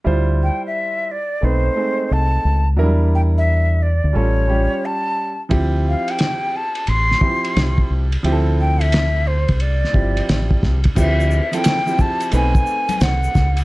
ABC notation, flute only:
X:1
M:4/4
L:1/16
Q:"Swing 16ths" 1/4=88
K:Dm
V:1 name="Flute"
z2 g e3 d2 c4 a3 z | z2 g e3 d2 ^c4 a3 z | z2 f g3 a2 c'6 z2 | z2 g e3 c2 d6 z2 |
e3 g3 a2 ^g4 ^f3 z |]